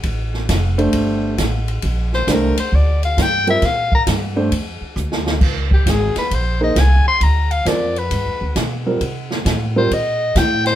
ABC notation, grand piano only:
X:1
M:4/4
L:1/8
Q:"Swing" 1/4=134
K:Bb
V:1 name="Grand piano"
z3 [A,DGc]3 z2 | z2 [A,DGc] z4 [G,CFB] | z3 [A,DGc] z4 | z4 z [B,E_Ac] z2 |
z2 [CFBd] z4 [G,CFB] | z3 [G,CFB] z4 |]